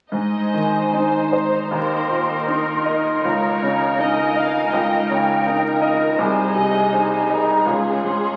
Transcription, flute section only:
0.11 G#5
1.34 A#5
1.72 C6
3.23 A#5
3.98 G#5
4.72 G5
6.19 G#5
7.30 A#5
7.65 C6

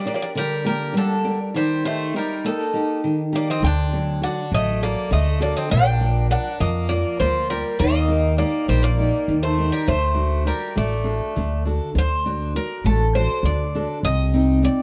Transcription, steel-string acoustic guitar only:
0.06 D4 G4 A#4
0.35 D3
0.64 A#3 D4 G4
0.94 G3
1.24 D4 G4 A#4
1.54 D#3
1.84 D#4 G4
2.14 D#4 G4
2.45 A#3
2.74 D#4 G4
3.04 D#3
3.32 D#4 G4 A#4
3.63 D3
3.92 F#3 D4 A4
4.22 D3 F#4 A4
4.52 F#3
4.82 F#4 A4
5.11 D3
5.39 D4 F#4 A4
5.71 A#3
6.00 F3 A#4 D5
6.30 A#4
6.60 F3
6.89 F4 A#4 D5
7.19 A#3
7.50 F4 A#4 D5
7.80 D#3
8.08 D#4 G4 A#4
8.38 D#4 G4 A#4
8.68 A#3
8.98 D#4 G4 A#4
9.28 D#3
9.58 D#4 G4 A#4
9.88 D3
10.15 D4 F#4
10.46 D4 F#4
10.76 A3
11.04 D4 F#4 A4
11.36 D3
11.65 D4 F#4 A4
11.95 D3
12.26 D4 F#4
12.56 D4 F#4
12.86 A3
13.16 D4 F#4 A4
13.46 D3
13.75 D4 F#4 A4
14.04 C3
14.34 C4 D#4 G4
14.63 C4 D#4 G4

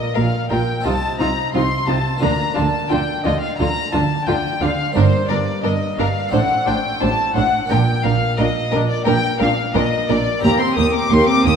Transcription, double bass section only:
0.16 A#1
0.52 A#1
0.86 C2
1.20 C2
1.55 C2
1.90 C2
2.24 D2
2.58 D2
2.92 D2
3.26 D2
3.59 D2
3.94 D2
4.28 D2
4.61 D2
4.96 G1
5.30 G1
5.65 G1
5.98 G1
6.33 A1
6.68 A1
7.02 A1
7.36 A1
7.70 A#1
8.06 A#1
8.39 A#1
8.74 A#1
9.07 A#1
9.42 A#1
9.76 A#1
10.10 A#1
10.44 D#2
10.77 D#2
11.11 D#2
11.45 D#2

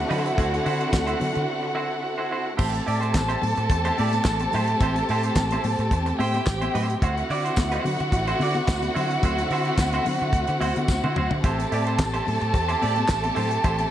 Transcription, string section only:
Already playing: D3 C4 E4 A4
2.58 A3 C4 G4
6.99 D3 C4 E4 F#4
11.43 A3 G4

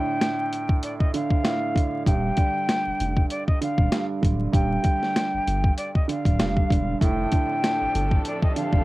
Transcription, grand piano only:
Already playing: A2 D3
1.14 D3
1.43 A2
1.75 D3
2.06 G2
2.37 D3
3.61 D3
3.92 G2
4.22 D3
4.53 G2
4.83 D3
6.08 D3
6.39 G2
6.70 D3
7.01 A2
7.32 D3
8.56 D3

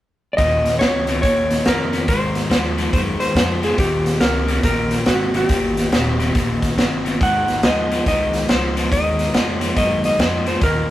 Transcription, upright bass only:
0.38 D#2
0.81 C#2
1.23 D#2
1.67 F2
2.08 G#2
2.50 D#2
2.93 F#2
3.21 muted upright bass stroke
3.34 F2
3.78 D#2
4.20 C#2
4.63 A#1
5.07 G#1
5.49 G1
5.92 D#1
6.35 A#1
6.77 G1
7.21 G#1
7.64 D#2
8.07 C2
8.50 C#2
8.92 D#2
9.34 F2
9.77 F#2
10.19 F2
10.62 D#2

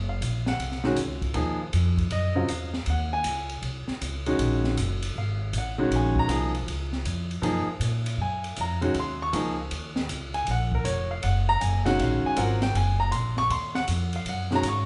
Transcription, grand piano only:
0.09 F5
0.48 F#5
0.84 D#3 G#3 C#4 F#4
1.34 F3 A#3 D#4 G#4
2.12 D#5
2.35 C#3 F#3 C4 F4
2.49 F5
2.90 F#5
3.13 G#5
4.26 D#3 G#3 C#4 F#4
5.18 F5
5.58 F#5
5.78 D#3 G#3 C#4 F#4
5.96 G#5
6.19 A#5
6.28 F3 A#3 D#4 G#4
7.42 F3 A#3 D#4 G#4
8.22 G#5
8.61 A#5
8.81 D#3 G#3 C#4 F#4
9.00 C6
9.22 C#6
9.33 F3 A#3 D#4 G#4
10.34 G#5
10.51 F#5
10.75 A#4
10.85 C#5
11.11 F5
11.23 F#5
11.49 A#5
11.61 G#5
11.85 D#3 G#3 C#4 F#4 F#5
12.01 F5
12.26 G#5
12.37 F#3 C4 F4 A#4 F#5
12.63 G5
12.77 G#5
13.00 A#5
13.12 C6
13.38 C#6
13.51 C6
13.75 F#5
14.16 F5
14.29 F#5
14.51 D#3 G#3 C#4 F#4
14.55 A#5
14.68 C#6

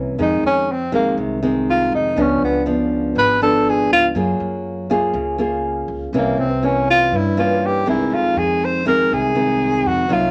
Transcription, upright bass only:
Already playing: C2
0.19 F2
0.43 F2
1.17 C2
1.92 F2
2.16 C#2
2.42 C#2
3.16 G#1
3.90 C#2
4.15 F#2
4.40 F#2
5.13 C#2
5.88 C#2
6.13 C2
6.38 C2
7.12 G2
7.87 C2
8.12 F2
8.36 F2
9.12 C2
9.86 F2
10.10 C2

